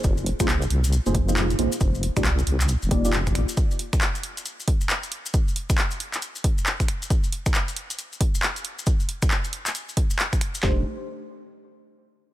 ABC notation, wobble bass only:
X:1
M:4/4
L:1/16
Q:"Swing 16ths" 1/4=136
K:Fdor
V:1 name="Wobble bass" clef=bass
F,,,3 C,,3 C,,3 F,,,4- F,,, B,,, z | F,,,3 C,,3 C,,3 F,,,4- F,,, B,,, z | z16 | z16 |
z16 | z16 | F,,,2 z12 z2 |]